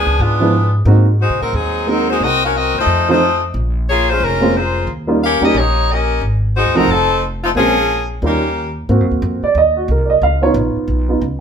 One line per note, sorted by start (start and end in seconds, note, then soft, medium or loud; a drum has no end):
0.00 0.19 F3 medium
0.00 0.19 B3 medium
0.00 0.19 D4 medium
0.00 0.19 G#4 medium
0.06 0.18 C#2 medium
0.19 0.83 G#2 medium
0.19 0.75 G#3 medium
0.19 0.75 B3 medium
0.19 0.75 D4 medium
0.19 0.75 F4 medium
0.40 0.51 F3 medium
0.40 0.52 G#3 medium
0.40 0.52 B3 medium
0.40 0.52 D4 medium
0.40 0.52 E4 medium
0.85 1.27 G#2 medium
0.85 1.05 G#3 medium
0.85 1.05 A#3 medium
0.85 1.05 C4 medium
0.85 1.05 D#4 medium
0.85 1.06 F#4 medium
1.21 1.40 G#3 medium
1.21 1.40 D#4 medium
1.21 1.40 F#4 medium
1.21 1.40 C5 medium
1.42 1.52 A2 medium
1.42 1.53 F#3 medium
1.42 1.53 C4 medium
1.42 1.53 D#4 medium
1.42 1.53 A#4 medium
1.53 2.17 D#2 medium
1.53 1.88 F#3 medium
1.53 1.88 C4 medium
1.53 1.87 D#4 medium
1.53 1.88 G#4 medium
1.86 2.09 F#3 medium
1.86 2.20 G#3 soft
1.86 2.20 A#3 soft
1.86 2.20 C4 soft
1.86 2.08 C4 medium
1.86 2.21 D#4 soft
1.86 2.08 D#4 medium
1.86 2.21 G#4 medium
1.86 2.08 A#4 medium
2.10 2.21 G#3 medium
2.10 2.21 D#4 medium
2.10 2.21 F#4 medium
2.10 2.21 C5 medium
2.20 2.71 C2 medium
2.20 2.43 C4 medium
2.20 2.42 F#4 medium
2.20 2.43 A#4 medium
2.20 2.43 D#5 loud
2.45 2.55 C#4 medium
2.45 2.55 F#4 medium
2.45 2.55 A#4 medium
2.45 2.55 F5 medium
2.57 2.76 C4 medium
2.57 2.76 F#4 medium
2.57 2.76 A#4 medium
2.57 2.76 D#5 medium
2.74 2.86 D#2 medium
2.78 3.08 A3 medium
2.78 3.08 D#4 medium
2.78 3.08 F4 medium
2.78 3.08 C5 medium
2.86 3.50 F2 medium
3.08 3.20 F3 medium
3.08 3.20 A3 medium
3.08 3.41 A3 medium
3.08 3.20 C4 medium
3.08 3.20 D#4 medium
3.08 3.41 D#4 medium
3.08 3.20 F4 medium
3.08 3.41 F4 medium
3.08 3.41 C5 medium
3.54 4.18 A#1 medium
3.89 4.08 A#3 medium
3.89 4.08 F4 medium
3.89 4.08 G#4 medium
3.89 4.08 C#5 loud
4.10 4.22 G#3 medium
4.10 4.22 C#4 medium
4.10 4.22 F4 medium
4.10 4.22 C5 loud
4.20 4.84 F1 medium
4.20 4.56 G#3 medium
4.20 4.56 C#4 medium
4.24 4.56 F4 medium
4.24 4.56 A#4 medium
4.41 4.53 G#3 medium
4.41 4.53 A#3 medium
4.41 4.53 C4 medium
4.41 4.53 C#4 medium
4.41 4.54 F4 medium
4.57 4.89 A#3 medium
4.57 4.89 F4 medium
4.57 4.89 G#4 medium
4.57 4.89 C5 medium
4.87 5.38 D#2 medium
5.07 5.19 G3 medium
5.07 5.19 A#3 medium
5.07 5.20 C#4 medium
5.07 5.20 D#4 medium
5.07 5.20 F4 medium
5.24 5.42 C#4 medium
5.24 5.42 G4 medium
5.24 5.42 A#4 medium
5.24 5.42 F5 loud
5.40 5.53 E2 medium
5.40 5.53 G3 medium
5.40 5.53 A#3 medium
5.40 5.53 C#4 medium
5.40 5.53 D#4 medium
5.40 5.54 G4 medium
5.45 5.56 C#4 medium
5.45 5.56 G4 medium
5.45 5.56 A#4 medium
5.45 5.56 D#5 medium
5.54 6.18 A#1 loud
5.54 5.90 A#3 medium
5.54 5.90 D#4 medium
5.54 5.90 C#5 medium
5.58 5.90 G4 medium
5.91 6.23 C#4 medium
5.91 6.23 G4 medium
5.91 6.23 A#4 medium
5.91 6.23 D#5 medium
6.21 6.63 G#1 medium
6.57 6.75 G#3 medium
6.57 6.75 D#4 medium
6.57 6.75 F#4 medium
6.57 6.75 C5 medium
6.66 6.76 D#2 medium
6.75 6.87 C2 medium
6.75 6.87 F3 medium
6.75 6.89 F#3 medium
6.75 6.87 A3 medium
6.75 6.87 C4 medium
6.75 6.89 C4 medium
6.75 6.87 D#4 medium
6.75 6.89 D#4 medium
6.75 6.88 F4 medium
6.75 6.89 A#4 loud
6.88 7.52 F1 medium
6.88 7.23 F3 medium
6.88 7.23 C4 medium
6.88 7.23 D#4 medium
6.88 7.23 A4 medium
7.44 7.49 A3 medium
7.44 7.49 C4 medium
7.44 7.49 D#4 medium
7.44 7.49 F4 medium
7.55 8.18 A#1 medium
7.55 8.07 F3 medium
7.55 7.74 G#3 medium
7.55 7.74 A#3 medium
7.55 8.07 A#3 medium
7.55 7.74 C4 medium
7.55 7.75 C#4 medium
7.55 8.07 C#4 medium
7.55 7.75 F4 medium
7.55 8.07 G#4 loud
8.22 8.86 D#2 medium
8.22 8.74 D#3 medium
8.22 8.41 G3 medium
8.22 8.41 A#3 soft
8.22 8.74 A#3 medium
8.22 8.41 C#4 soft
8.22 8.74 C#4 medium
8.22 8.41 D#4 soft
8.22 8.42 F4 medium
8.22 8.74 G4 medium
8.89 9.00 G#2 medium
8.89 9.40 A#3 medium
8.89 9.41 C4 soft
8.89 9.41 F#4 medium
9.00 9.11 F#2 medium
9.11 9.22 D#2 medium
9.22 9.41 F2 loud
9.43 9.56 D5 medium
9.43 muted upright bass stroke soft
9.55 9.88 D#2 medium
9.55 9.77 D#5 medium
9.77 9.89 F#4 soft
9.88 10.21 C2 medium
9.88 10.10 A#4 medium
10.05 10.07 D5 soft
10.10 10.22 D#5 medium
10.22 10.54 C#2 medium
10.22 10.43 F5 medium
10.41 11.07 B3 soft
10.41 11.07 D#4 soft
10.41 11.08 F4 medium
10.41 10.51 C#5 medium
10.54 10.74 A#1 loud
10.76 muted upright bass stroke soft
10.88 11.21 B1 medium
11.09 11.21 B3 soft
11.09 11.21 D#4 soft
11.09 11.21 F4 soft
11.21 11.40 C#2 medium